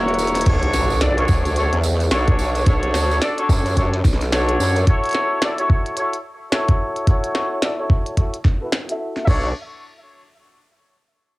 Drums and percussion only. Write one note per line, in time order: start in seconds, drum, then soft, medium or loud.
0.08 closed hi-hat soft
0.14 closed hi-hat soft
0.19 closed hi-hat medium
0.19 tambourine medium
0.27 closed hi-hat soft
0.35 snare soft
0.35 closed hi-hat medium
0.35 tambourine medium
0.37 closed hi-hat soft
0.41 closed hi-hat medium
0.45 kick loud
0.45 closed hi-hat medium
0.45 tambourine soft
0.45 crash loud
0.63 closed hi-hat medium
0.73 snare medium
0.73 tambourine loud
0.90 tambourine medium
1.01 snare loud
1.01 closed hi-hat medium
1.01 tambourine soft
1.18 closed hi-hat medium
1.28 kick loud
1.28 tambourine medium
1.45 closed hi-hat soft
1.45 tambourine soft
1.56 closed hi-hat medium
1.56 tambourine soft
1.73 closed hi-hat medium
1.83 tambourine loud
2.00 closed hi-hat soft
2.00 tambourine medium
2.11 snare loud
2.11 closed hi-hat medium
2.11 tambourine soft
2.28 kick loud
2.28 closed hi-hat medium
2.39 tambourine loud
2.55 closed hi-hat soft
2.55 tambourine medium
2.66 kick loud
2.66 closed hi-hat medium
2.83 closed hi-hat medium
2.94 snare medium
2.94 tambourine medium
3.11 tambourine medium
3.22 snare loud
3.22 closed hi-hat medium
3.22 tambourine soft
3.38 closed hi-hat medium
3.49 kick loud
3.49 tambourine loud
3.66 closed hi-hat soft
3.66 tambourine medium
3.77 kick medium
3.77 closed hi-hat medium
3.77 tambourine soft
3.94 closed hi-hat medium
4.05 kick loud
4.05 snare medium
4.05 tambourine medium
4.14 snare soft
4.21 snare soft
4.21 closed hi-hat soft
4.21 tambourine medium
4.32 snare loud
4.32 closed hi-hat medium
4.32 tambourine soft
4.49 closed hi-hat medium
4.60 tambourine loud
4.76 closed hi-hat soft
4.76 tambourine medium
4.87 kick loud
4.87 closed hi-hat medium
5.04 closed hi-hat soft
5.05 closed hi-hat soft
5.09 closed hi-hat soft
5.11 closed hi-hat soft
5.13 snare medium
5.13 closed hi-hat soft
5.42 snare loud
5.42 closed hi-hat medium
5.58 closed hi-hat medium
5.70 kick loud
5.86 closed hi-hat soft
5.97 closed hi-hat medium
6.13 closed hi-hat medium
6.52 snare loud
6.52 closed hi-hat medium
6.69 kick loud
6.69 closed hi-hat medium
6.96 closed hi-hat soft
7.07 kick loud
7.07 closed hi-hat medium
7.24 closed hi-hat medium
7.35 snare medium
7.62 snare loud
7.62 closed hi-hat medium
7.90 kick loud
8.06 closed hi-hat soft
8.17 kick medium
8.17 closed hi-hat medium
8.34 closed hi-hat medium
8.45 kick loud
8.45 snare soft
8.72 snare loud
8.72 closed hi-hat medium
8.89 closed hi-hat medium
9.17 snare soft
9.27 kick loud
9.27 crash medium